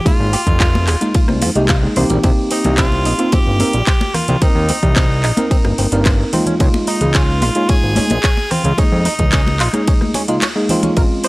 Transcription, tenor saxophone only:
0, 0, Header, 1, 2, 480
1, 0, Start_track
1, 0, Tempo, 545455
1, 52, Time_signature, 4, 2, 24, 8
1, 9928, End_track
2, 0, Start_track
2, 0, Title_t, "Tenor saxophone"
2, 0, Program_c, 0, 66
2, 62, Note_on_c, 0, 65, 108
2, 1462, Note_off_c, 0, 65, 0
2, 2217, Note_on_c, 0, 63, 87
2, 2438, Note_off_c, 0, 63, 0
2, 2460, Note_on_c, 0, 65, 107
2, 2936, Note_on_c, 0, 67, 111
2, 2949, Note_off_c, 0, 65, 0
2, 3646, Note_on_c, 0, 65, 101
2, 3659, Note_off_c, 0, 67, 0
2, 3888, Note_on_c, 0, 63, 95
2, 3901, Note_off_c, 0, 65, 0
2, 5330, Note_off_c, 0, 63, 0
2, 6059, Note_on_c, 0, 63, 92
2, 6291, Note_on_c, 0, 65, 108
2, 6304, Note_off_c, 0, 63, 0
2, 6771, Note_on_c, 0, 68, 117
2, 6784, Note_off_c, 0, 65, 0
2, 7489, Note_on_c, 0, 65, 105
2, 7502, Note_off_c, 0, 68, 0
2, 7732, Note_on_c, 0, 63, 99
2, 7745, Note_off_c, 0, 65, 0
2, 9172, Note_off_c, 0, 63, 0
2, 9928, End_track
0, 0, End_of_file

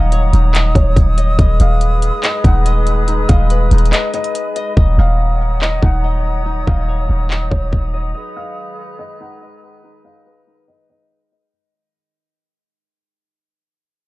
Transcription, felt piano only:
0, 0, Header, 1, 2, 480
1, 0, Start_track
1, 0, Tempo, 422535
1, 1577, Time_signature, 4, 2, 24, 8
1, 15990, End_track
2, 0, Start_track
2, 0, Title_t, "Felt piano"
2, 0, Program_c, 0, 0
2, 0, Note_on_c, 0, 77, 77
2, 575, Note_off_c, 0, 77, 0
2, 607, Note_on_c, 0, 75, 71
2, 840, Note_off_c, 0, 75, 0
2, 852, Note_on_c, 0, 73, 80
2, 1082, Note_off_c, 0, 73, 0
2, 1826, Note_on_c, 0, 77, 77
2, 2499, Note_off_c, 0, 77, 0
2, 2539, Note_on_c, 0, 75, 75
2, 2766, Note_off_c, 0, 75, 0
2, 2779, Note_on_c, 0, 78, 73
2, 3006, Note_off_c, 0, 78, 0
2, 3735, Note_on_c, 0, 77, 75
2, 4413, Note_off_c, 0, 77, 0
2, 4451, Note_on_c, 0, 75, 88
2, 4682, Note_off_c, 0, 75, 0
2, 4704, Note_on_c, 0, 75, 84
2, 5377, Note_off_c, 0, 75, 0
2, 5667, Note_on_c, 0, 77, 89
2, 6339, Note_off_c, 0, 77, 0
2, 6384, Note_on_c, 0, 75, 94
2, 6609, Note_off_c, 0, 75, 0
2, 6623, Note_on_c, 0, 78, 78
2, 6848, Note_off_c, 0, 78, 0
2, 7583, Note_on_c, 0, 77, 75
2, 8257, Note_off_c, 0, 77, 0
2, 8288, Note_on_c, 0, 75, 69
2, 8520, Note_off_c, 0, 75, 0
2, 8530, Note_on_c, 0, 73, 78
2, 8761, Note_off_c, 0, 73, 0
2, 9504, Note_on_c, 0, 77, 74
2, 10177, Note_off_c, 0, 77, 0
2, 10214, Note_on_c, 0, 75, 80
2, 10443, Note_off_c, 0, 75, 0
2, 10460, Note_on_c, 0, 78, 70
2, 10686, Note_off_c, 0, 78, 0
2, 11415, Note_on_c, 0, 77, 72
2, 12092, Note_off_c, 0, 77, 0
2, 12134, Note_on_c, 0, 75, 88
2, 12363, Note_off_c, 0, 75, 0
2, 12380, Note_on_c, 0, 75, 88
2, 13055, Note_off_c, 0, 75, 0
2, 15990, End_track
0, 0, End_of_file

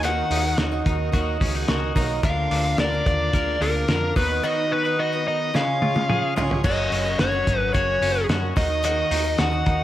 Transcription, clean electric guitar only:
0, 0, Header, 1, 2, 480
1, 0, Start_track
1, 0, Key_signature, 6, "major"
1, 0, Tempo, 549954
1, 31, Time_signature, 4, 2, 24, 8
1, 8586, End_track
2, 0, Start_track
2, 0, Title_t, "Clean electric guitar"
2, 0, Program_c, 0, 27
2, 35, Note_on_c, 0, 51, 84
2, 40, Note_on_c, 0, 66, 72
2, 275, Note_on_c, 0, 63, 61
2, 504, Note_off_c, 0, 66, 0
2, 514, Note_on_c, 0, 66, 65
2, 745, Note_off_c, 0, 63, 0
2, 755, Note_on_c, 0, 63, 62
2, 981, Note_off_c, 0, 66, 0
2, 991, Note_on_c, 0, 66, 72
2, 1230, Note_off_c, 0, 63, 0
2, 1233, Note_on_c, 0, 61, 60
2, 1353, Note_off_c, 0, 61, 0
2, 1353, Note_on_c, 0, 63, 55
2, 1463, Note_off_c, 0, 66, 0
2, 1473, Note_on_c, 0, 66, 75
2, 1704, Note_off_c, 0, 63, 0
2, 1715, Note_on_c, 0, 63, 65
2, 1949, Note_off_c, 0, 51, 0
2, 1952, Note_on_c, 0, 50, 92
2, 1953, Note_off_c, 0, 66, 0
2, 1959, Note_on_c, 0, 70, 62
2, 2002, Note_off_c, 0, 63, 0
2, 2193, Note_on_c, 0, 62, 64
2, 2423, Note_off_c, 0, 70, 0
2, 2434, Note_on_c, 0, 70, 66
2, 2665, Note_off_c, 0, 62, 0
2, 2675, Note_on_c, 0, 62, 62
2, 2906, Note_off_c, 0, 70, 0
2, 2916, Note_on_c, 0, 70, 76
2, 3146, Note_off_c, 0, 62, 0
2, 3157, Note_on_c, 0, 62, 62
2, 3387, Note_off_c, 0, 70, 0
2, 3398, Note_on_c, 0, 70, 74
2, 3630, Note_off_c, 0, 50, 0
2, 3633, Note_on_c, 0, 51, 82
2, 3684, Note_off_c, 0, 62, 0
2, 3684, Note_off_c, 0, 70, 0
2, 3862, Note_off_c, 0, 51, 0
2, 3873, Note_on_c, 0, 51, 86
2, 3878, Note_on_c, 0, 66, 71
2, 4115, Note_on_c, 0, 61, 60
2, 4235, Note_off_c, 0, 61, 0
2, 4235, Note_on_c, 0, 63, 55
2, 4348, Note_off_c, 0, 66, 0
2, 4358, Note_on_c, 0, 66, 67
2, 4589, Note_off_c, 0, 63, 0
2, 4599, Note_on_c, 0, 63, 62
2, 4834, Note_off_c, 0, 51, 0
2, 4838, Note_on_c, 0, 49, 82
2, 4885, Note_off_c, 0, 63, 0
2, 4885, Note_off_c, 0, 66, 0
2, 5080, Note_on_c, 0, 65, 60
2, 5320, Note_on_c, 0, 68, 70
2, 5547, Note_off_c, 0, 65, 0
2, 5557, Note_on_c, 0, 65, 60
2, 5797, Note_on_c, 0, 42, 81
2, 5801, Note_off_c, 0, 68, 0
2, 5805, Note_on_c, 0, 66, 73
2, 5844, Note_off_c, 0, 65, 0
2, 5845, Note_off_c, 0, 49, 0
2, 6045, Note_on_c, 0, 61, 64
2, 6280, Note_off_c, 0, 66, 0
2, 6284, Note_on_c, 0, 66, 69
2, 6512, Note_off_c, 0, 61, 0
2, 6522, Note_on_c, 0, 61, 59
2, 6760, Note_off_c, 0, 66, 0
2, 6764, Note_on_c, 0, 66, 74
2, 6990, Note_off_c, 0, 61, 0
2, 7001, Note_on_c, 0, 61, 66
2, 7238, Note_off_c, 0, 66, 0
2, 7242, Note_on_c, 0, 66, 71
2, 7478, Note_on_c, 0, 51, 88
2, 7524, Note_off_c, 0, 42, 0
2, 7526, Note_off_c, 0, 61, 0
2, 7708, Note_off_c, 0, 51, 0
2, 7719, Note_on_c, 0, 51, 91
2, 7723, Note_off_c, 0, 66, 0
2, 7726, Note_on_c, 0, 66, 75
2, 7952, Note_on_c, 0, 63, 66
2, 8183, Note_off_c, 0, 66, 0
2, 8194, Note_on_c, 0, 66, 73
2, 8421, Note_off_c, 0, 63, 0
2, 8432, Note_on_c, 0, 63, 62
2, 8586, Note_off_c, 0, 51, 0
2, 8586, Note_off_c, 0, 63, 0
2, 8586, Note_off_c, 0, 66, 0
2, 8586, End_track
0, 0, End_of_file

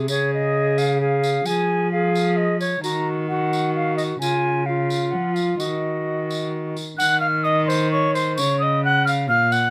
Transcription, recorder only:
0, 0, Header, 1, 2, 480
1, 0, Start_track
1, 0, Tempo, 458365
1, 84, Time_signature, 3, 2, 24, 8
1, 4884, Tempo, 463320
1, 10102, End_track
2, 0, Start_track
2, 0, Title_t, "Recorder"
2, 0, Program_c, 0, 74
2, 98, Note_on_c, 0, 68, 63
2, 1031, Note_off_c, 0, 68, 0
2, 1055, Note_on_c, 0, 68, 58
2, 1519, Note_off_c, 0, 68, 0
2, 1540, Note_on_c, 0, 68, 58
2, 1978, Note_off_c, 0, 68, 0
2, 2020, Note_on_c, 0, 68, 67
2, 2678, Note_off_c, 0, 68, 0
2, 2967, Note_on_c, 0, 66, 63
2, 3435, Note_off_c, 0, 66, 0
2, 3453, Note_on_c, 0, 66, 65
2, 4390, Note_off_c, 0, 66, 0
2, 4408, Note_on_c, 0, 65, 58
2, 4854, Note_off_c, 0, 65, 0
2, 4903, Note_on_c, 0, 65, 61
2, 5855, Note_on_c, 0, 66, 53
2, 5871, Note_off_c, 0, 65, 0
2, 7062, Note_off_c, 0, 66, 0
2, 7286, Note_on_c, 0, 78, 99
2, 7513, Note_off_c, 0, 78, 0
2, 7519, Note_on_c, 0, 77, 85
2, 7582, Note_off_c, 0, 77, 0
2, 7764, Note_on_c, 0, 75, 92
2, 8013, Note_on_c, 0, 72, 80
2, 8029, Note_off_c, 0, 75, 0
2, 8254, Note_off_c, 0, 72, 0
2, 8267, Note_on_c, 0, 73, 85
2, 8493, Note_on_c, 0, 72, 75
2, 8508, Note_off_c, 0, 73, 0
2, 8747, Note_on_c, 0, 73, 90
2, 8762, Note_off_c, 0, 72, 0
2, 8989, Note_on_c, 0, 75, 78
2, 9005, Note_off_c, 0, 73, 0
2, 9212, Note_off_c, 0, 75, 0
2, 9218, Note_on_c, 0, 78, 93
2, 9448, Note_off_c, 0, 78, 0
2, 9457, Note_on_c, 0, 77, 80
2, 9666, Note_off_c, 0, 77, 0
2, 9673, Note_on_c, 0, 77, 87
2, 9914, Note_on_c, 0, 78, 82
2, 9929, Note_off_c, 0, 77, 0
2, 10102, Note_off_c, 0, 78, 0
2, 10102, End_track
0, 0, End_of_file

